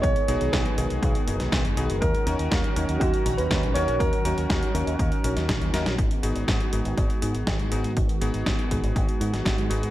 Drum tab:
HH |xxxxxxxxxxxxxxxx|xxxxxxxxxxxxxxxx|xxxxxxxxxxxxxxxx|xxxxxxxxxxxxxxxx|
SD |----o------oo---|----o-------o---|----o------oo-oo|----o-------o---|
BD |o---o---o---o---|o---o---o---o---|o---o---o---o---|o---o---o---o---|

HH |xxxxxxxxxxxxxxxx|
SD |----o------oo---|
BD |o---o-o-o---o---|